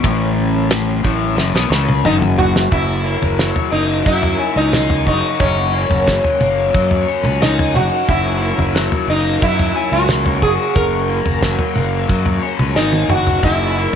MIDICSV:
0, 0, Header, 1, 6, 480
1, 0, Start_track
1, 0, Tempo, 669643
1, 28, Time_signature, 4, 2, 24, 8
1, 10003, End_track
2, 0, Start_track
2, 0, Title_t, "String machine"
2, 0, Program_c, 0, 50
2, 0, Note_on_c, 0, 54, 82
2, 0, Note_on_c, 0, 61, 79
2, 0, Note_on_c, 0, 70, 79
2, 0, Note_on_c, 0, 73, 93
2, 1918, Note_off_c, 0, 73, 0
2, 1920, Note_off_c, 0, 70, 0
2, 1921, Note_off_c, 0, 61, 0
2, 1922, Note_off_c, 0, 54, 0
2, 1938, Note_on_c, 0, 73, 73
2, 1940, Note_on_c, 0, 70, 75
2, 1941, Note_on_c, 0, 82, 84
2, 1946, Note_on_c, 0, 66, 83
2, 9598, Note_off_c, 0, 73, 0
2, 9625, Note_on_c, 0, 75, 70
2, 10003, Note_off_c, 0, 66, 0
2, 10003, Note_off_c, 0, 70, 0
2, 10003, Note_off_c, 0, 75, 0
2, 10003, Note_off_c, 0, 82, 0
2, 10003, End_track
3, 0, Start_track
3, 0, Title_t, "Sitar"
3, 0, Program_c, 1, 104
3, 1474, Note_on_c, 1, 63, 82
3, 1539, Note_off_c, 1, 63, 0
3, 1708, Note_on_c, 1, 66, 88
3, 1951, Note_on_c, 1, 64, 84
3, 1956, Note_off_c, 1, 66, 0
3, 2663, Note_off_c, 1, 64, 0
3, 2666, Note_on_c, 1, 63, 81
3, 2913, Note_off_c, 1, 63, 0
3, 2915, Note_on_c, 1, 64, 83
3, 3273, Note_off_c, 1, 64, 0
3, 3276, Note_on_c, 1, 63, 85
3, 3631, Note_off_c, 1, 63, 0
3, 3639, Note_on_c, 1, 63, 79
3, 3867, Note_off_c, 1, 63, 0
3, 3870, Note_on_c, 1, 61, 81
3, 5313, Note_off_c, 1, 61, 0
3, 5316, Note_on_c, 1, 63, 88
3, 5557, Note_on_c, 1, 66, 93
3, 5563, Note_off_c, 1, 63, 0
3, 5780, Note_off_c, 1, 66, 0
3, 5800, Note_on_c, 1, 64, 89
3, 6518, Note_off_c, 1, 64, 0
3, 6521, Note_on_c, 1, 63, 86
3, 6758, Note_off_c, 1, 63, 0
3, 6761, Note_on_c, 1, 64, 94
3, 7093, Note_off_c, 1, 64, 0
3, 7115, Note_on_c, 1, 66, 86
3, 7450, Note_off_c, 1, 66, 0
3, 7474, Note_on_c, 1, 68, 95
3, 7698, Note_off_c, 1, 68, 0
3, 7709, Note_on_c, 1, 70, 101
3, 9148, Note_on_c, 1, 63, 80
3, 9193, Note_off_c, 1, 70, 0
3, 9373, Note_off_c, 1, 63, 0
3, 9387, Note_on_c, 1, 66, 85
3, 9632, Note_off_c, 1, 66, 0
3, 9635, Note_on_c, 1, 64, 93
3, 10003, Note_off_c, 1, 64, 0
3, 10003, End_track
4, 0, Start_track
4, 0, Title_t, "Overdriven electric guitar"
4, 0, Program_c, 2, 29
4, 21, Note_on_c, 2, 45, 104
4, 735, Note_off_c, 2, 45, 0
4, 744, Note_on_c, 2, 45, 101
4, 976, Note_on_c, 2, 42, 104
4, 979, Note_off_c, 2, 45, 0
4, 1095, Note_off_c, 2, 42, 0
4, 1108, Note_on_c, 2, 47, 112
4, 1221, Note_off_c, 2, 47, 0
4, 1224, Note_on_c, 2, 49, 106
4, 1459, Note_off_c, 2, 49, 0
4, 1467, Note_on_c, 2, 42, 101
4, 1934, Note_off_c, 2, 42, 0
4, 1943, Note_on_c, 2, 42, 64
4, 2185, Note_on_c, 2, 58, 57
4, 2426, Note_on_c, 2, 54, 66
4, 2656, Note_off_c, 2, 58, 0
4, 2659, Note_on_c, 2, 58, 65
4, 2902, Note_off_c, 2, 54, 0
4, 2904, Note_on_c, 2, 54, 65
4, 3152, Note_on_c, 2, 61, 60
4, 3393, Note_off_c, 2, 58, 0
4, 3396, Note_on_c, 2, 58, 65
4, 3631, Note_on_c, 2, 66, 74
4, 3871, Note_off_c, 2, 42, 0
4, 3874, Note_on_c, 2, 42, 68
4, 4110, Note_off_c, 2, 58, 0
4, 4112, Note_on_c, 2, 58, 58
4, 4347, Note_off_c, 2, 54, 0
4, 4350, Note_on_c, 2, 54, 67
4, 4587, Note_off_c, 2, 58, 0
4, 4590, Note_on_c, 2, 58, 63
4, 4826, Note_off_c, 2, 54, 0
4, 4829, Note_on_c, 2, 54, 68
4, 5066, Note_off_c, 2, 61, 0
4, 5069, Note_on_c, 2, 61, 68
4, 5305, Note_off_c, 2, 58, 0
4, 5308, Note_on_c, 2, 58, 64
4, 5548, Note_off_c, 2, 66, 0
4, 5551, Note_on_c, 2, 66, 72
4, 5792, Note_off_c, 2, 42, 0
4, 5795, Note_on_c, 2, 42, 68
4, 6028, Note_off_c, 2, 58, 0
4, 6031, Note_on_c, 2, 58, 58
4, 6268, Note_off_c, 2, 54, 0
4, 6271, Note_on_c, 2, 54, 69
4, 6512, Note_off_c, 2, 58, 0
4, 6514, Note_on_c, 2, 58, 67
4, 6737, Note_off_c, 2, 54, 0
4, 6740, Note_on_c, 2, 54, 72
4, 6991, Note_off_c, 2, 61, 0
4, 6994, Note_on_c, 2, 61, 65
4, 7225, Note_off_c, 2, 58, 0
4, 7227, Note_on_c, 2, 58, 69
4, 7462, Note_off_c, 2, 66, 0
4, 7465, Note_on_c, 2, 66, 77
4, 7703, Note_off_c, 2, 42, 0
4, 7706, Note_on_c, 2, 42, 70
4, 7948, Note_off_c, 2, 58, 0
4, 7951, Note_on_c, 2, 58, 59
4, 8192, Note_off_c, 2, 54, 0
4, 8195, Note_on_c, 2, 54, 70
4, 8429, Note_off_c, 2, 58, 0
4, 8432, Note_on_c, 2, 58, 68
4, 8663, Note_off_c, 2, 54, 0
4, 8665, Note_on_c, 2, 54, 65
4, 8903, Note_off_c, 2, 61, 0
4, 8906, Note_on_c, 2, 61, 61
4, 9144, Note_off_c, 2, 58, 0
4, 9147, Note_on_c, 2, 58, 67
4, 9389, Note_off_c, 2, 66, 0
4, 9392, Note_on_c, 2, 66, 69
4, 9635, Note_off_c, 2, 42, 0
4, 9638, Note_on_c, 2, 42, 67
4, 9873, Note_off_c, 2, 58, 0
4, 9876, Note_on_c, 2, 58, 62
4, 10003, Note_off_c, 2, 42, 0
4, 10003, Note_off_c, 2, 54, 0
4, 10003, Note_off_c, 2, 58, 0
4, 10003, Note_off_c, 2, 61, 0
4, 10003, Note_off_c, 2, 66, 0
4, 10003, End_track
5, 0, Start_track
5, 0, Title_t, "Fingered electric bass"
5, 0, Program_c, 3, 33
5, 30, Note_on_c, 3, 33, 94
5, 721, Note_off_c, 3, 33, 0
5, 747, Note_on_c, 3, 33, 92
5, 971, Note_off_c, 3, 33, 0
5, 982, Note_on_c, 3, 30, 94
5, 1096, Note_off_c, 3, 30, 0
5, 1104, Note_on_c, 3, 35, 93
5, 1213, Note_off_c, 3, 35, 0
5, 1217, Note_on_c, 3, 37, 99
5, 1446, Note_off_c, 3, 37, 0
5, 1462, Note_on_c, 3, 30, 93
5, 1917, Note_off_c, 3, 30, 0
5, 1948, Note_on_c, 3, 30, 88
5, 2259, Note_off_c, 3, 30, 0
5, 2306, Note_on_c, 3, 30, 89
5, 2515, Note_off_c, 3, 30, 0
5, 2668, Note_on_c, 3, 30, 87
5, 2876, Note_off_c, 3, 30, 0
5, 2909, Note_on_c, 3, 42, 81
5, 3117, Note_off_c, 3, 42, 0
5, 3269, Note_on_c, 3, 37, 85
5, 3629, Note_on_c, 3, 30, 86
5, 3639, Note_off_c, 3, 37, 0
5, 3734, Note_off_c, 3, 30, 0
5, 3873, Note_on_c, 3, 30, 91
5, 4183, Note_off_c, 3, 30, 0
5, 4225, Note_on_c, 3, 30, 95
5, 4436, Note_off_c, 3, 30, 0
5, 4591, Note_on_c, 3, 30, 89
5, 4799, Note_off_c, 3, 30, 0
5, 4836, Note_on_c, 3, 42, 87
5, 5042, Note_off_c, 3, 42, 0
5, 5186, Note_on_c, 3, 37, 97
5, 5550, Note_on_c, 3, 30, 84
5, 5561, Note_off_c, 3, 37, 0
5, 5656, Note_off_c, 3, 30, 0
5, 5795, Note_on_c, 3, 30, 94
5, 6105, Note_off_c, 3, 30, 0
5, 6150, Note_on_c, 3, 30, 92
5, 6359, Note_off_c, 3, 30, 0
5, 6507, Note_on_c, 3, 30, 90
5, 6717, Note_off_c, 3, 30, 0
5, 6752, Note_on_c, 3, 42, 88
5, 6960, Note_off_c, 3, 42, 0
5, 7109, Note_on_c, 3, 37, 92
5, 7470, Note_on_c, 3, 30, 84
5, 7480, Note_off_c, 3, 37, 0
5, 7575, Note_off_c, 3, 30, 0
5, 7711, Note_on_c, 3, 30, 93
5, 8022, Note_off_c, 3, 30, 0
5, 8071, Note_on_c, 3, 30, 92
5, 8278, Note_off_c, 3, 30, 0
5, 8428, Note_on_c, 3, 30, 95
5, 8637, Note_off_c, 3, 30, 0
5, 8667, Note_on_c, 3, 42, 91
5, 8876, Note_off_c, 3, 42, 0
5, 9027, Note_on_c, 3, 37, 91
5, 9135, Note_off_c, 3, 37, 0
5, 9139, Note_on_c, 3, 32, 72
5, 9361, Note_off_c, 3, 32, 0
5, 9376, Note_on_c, 3, 30, 74
5, 9599, Note_off_c, 3, 30, 0
5, 9626, Note_on_c, 3, 30, 93
5, 9938, Note_off_c, 3, 30, 0
5, 10003, End_track
6, 0, Start_track
6, 0, Title_t, "Drums"
6, 29, Note_on_c, 9, 36, 110
6, 30, Note_on_c, 9, 53, 69
6, 101, Note_off_c, 9, 36, 0
6, 102, Note_off_c, 9, 53, 0
6, 507, Note_on_c, 9, 53, 79
6, 508, Note_on_c, 9, 38, 117
6, 578, Note_off_c, 9, 53, 0
6, 580, Note_off_c, 9, 38, 0
6, 749, Note_on_c, 9, 36, 82
6, 821, Note_off_c, 9, 36, 0
6, 991, Note_on_c, 9, 38, 62
6, 1062, Note_off_c, 9, 38, 0
6, 1116, Note_on_c, 9, 38, 62
6, 1188, Note_off_c, 9, 38, 0
6, 1233, Note_on_c, 9, 38, 74
6, 1305, Note_off_c, 9, 38, 0
6, 1352, Note_on_c, 9, 47, 70
6, 1424, Note_off_c, 9, 47, 0
6, 1470, Note_on_c, 9, 45, 87
6, 1541, Note_off_c, 9, 45, 0
6, 1592, Note_on_c, 9, 45, 85
6, 1664, Note_off_c, 9, 45, 0
6, 1713, Note_on_c, 9, 43, 89
6, 1784, Note_off_c, 9, 43, 0
6, 1835, Note_on_c, 9, 38, 85
6, 1907, Note_off_c, 9, 38, 0
6, 1950, Note_on_c, 9, 36, 97
6, 1951, Note_on_c, 9, 43, 79
6, 2022, Note_off_c, 9, 36, 0
6, 2023, Note_off_c, 9, 43, 0
6, 2313, Note_on_c, 9, 43, 82
6, 2384, Note_off_c, 9, 43, 0
6, 2432, Note_on_c, 9, 38, 78
6, 2504, Note_off_c, 9, 38, 0
6, 2551, Note_on_c, 9, 43, 80
6, 2623, Note_off_c, 9, 43, 0
6, 2911, Note_on_c, 9, 36, 106
6, 2983, Note_off_c, 9, 36, 0
6, 3032, Note_on_c, 9, 43, 87
6, 3103, Note_off_c, 9, 43, 0
6, 3391, Note_on_c, 9, 47, 73
6, 3392, Note_on_c, 9, 38, 71
6, 3462, Note_off_c, 9, 47, 0
6, 3464, Note_off_c, 9, 38, 0
6, 3512, Note_on_c, 9, 43, 90
6, 3583, Note_off_c, 9, 43, 0
6, 3632, Note_on_c, 9, 36, 63
6, 3704, Note_off_c, 9, 36, 0
6, 3870, Note_on_c, 9, 43, 81
6, 3872, Note_on_c, 9, 36, 107
6, 3942, Note_off_c, 9, 43, 0
6, 3944, Note_off_c, 9, 36, 0
6, 4234, Note_on_c, 9, 43, 82
6, 4306, Note_off_c, 9, 43, 0
6, 4354, Note_on_c, 9, 36, 67
6, 4357, Note_on_c, 9, 38, 75
6, 4426, Note_off_c, 9, 36, 0
6, 4429, Note_off_c, 9, 38, 0
6, 4476, Note_on_c, 9, 43, 77
6, 4548, Note_off_c, 9, 43, 0
6, 4593, Note_on_c, 9, 47, 72
6, 4665, Note_off_c, 9, 47, 0
6, 4835, Note_on_c, 9, 36, 110
6, 4907, Note_off_c, 9, 36, 0
6, 4953, Note_on_c, 9, 43, 83
6, 5025, Note_off_c, 9, 43, 0
6, 5195, Note_on_c, 9, 47, 72
6, 5267, Note_off_c, 9, 47, 0
6, 5320, Note_on_c, 9, 47, 72
6, 5321, Note_on_c, 9, 38, 73
6, 5391, Note_off_c, 9, 47, 0
6, 5393, Note_off_c, 9, 38, 0
6, 5441, Note_on_c, 9, 43, 85
6, 5513, Note_off_c, 9, 43, 0
6, 5558, Note_on_c, 9, 47, 72
6, 5630, Note_off_c, 9, 47, 0
6, 5796, Note_on_c, 9, 36, 106
6, 5799, Note_on_c, 9, 43, 76
6, 5868, Note_off_c, 9, 36, 0
6, 5870, Note_off_c, 9, 43, 0
6, 6156, Note_on_c, 9, 43, 85
6, 6228, Note_off_c, 9, 43, 0
6, 6279, Note_on_c, 9, 38, 81
6, 6350, Note_off_c, 9, 38, 0
6, 6394, Note_on_c, 9, 43, 83
6, 6465, Note_off_c, 9, 43, 0
6, 6754, Note_on_c, 9, 36, 107
6, 6826, Note_off_c, 9, 36, 0
6, 6877, Note_on_c, 9, 43, 84
6, 6949, Note_off_c, 9, 43, 0
6, 7230, Note_on_c, 9, 47, 78
6, 7232, Note_on_c, 9, 38, 78
6, 7302, Note_off_c, 9, 47, 0
6, 7303, Note_off_c, 9, 38, 0
6, 7353, Note_on_c, 9, 43, 87
6, 7424, Note_off_c, 9, 43, 0
6, 7471, Note_on_c, 9, 36, 65
6, 7543, Note_off_c, 9, 36, 0
6, 7712, Note_on_c, 9, 36, 100
6, 7713, Note_on_c, 9, 43, 79
6, 7784, Note_off_c, 9, 36, 0
6, 7785, Note_off_c, 9, 43, 0
6, 8069, Note_on_c, 9, 43, 86
6, 8140, Note_off_c, 9, 43, 0
6, 8189, Note_on_c, 9, 38, 77
6, 8190, Note_on_c, 9, 36, 68
6, 8261, Note_off_c, 9, 38, 0
6, 8262, Note_off_c, 9, 36, 0
6, 8306, Note_on_c, 9, 43, 80
6, 8377, Note_off_c, 9, 43, 0
6, 8427, Note_on_c, 9, 47, 75
6, 8498, Note_off_c, 9, 47, 0
6, 8669, Note_on_c, 9, 36, 108
6, 8741, Note_off_c, 9, 36, 0
6, 8787, Note_on_c, 9, 43, 79
6, 8858, Note_off_c, 9, 43, 0
6, 9027, Note_on_c, 9, 47, 71
6, 9099, Note_off_c, 9, 47, 0
6, 9148, Note_on_c, 9, 38, 55
6, 9219, Note_off_c, 9, 38, 0
6, 9267, Note_on_c, 9, 48, 60
6, 9338, Note_off_c, 9, 48, 0
6, 9387, Note_on_c, 9, 45, 69
6, 9459, Note_off_c, 9, 45, 0
6, 9511, Note_on_c, 9, 43, 78
6, 9582, Note_off_c, 9, 43, 0
6, 9626, Note_on_c, 9, 43, 84
6, 9629, Note_on_c, 9, 36, 100
6, 9698, Note_off_c, 9, 43, 0
6, 9701, Note_off_c, 9, 36, 0
6, 10003, End_track
0, 0, End_of_file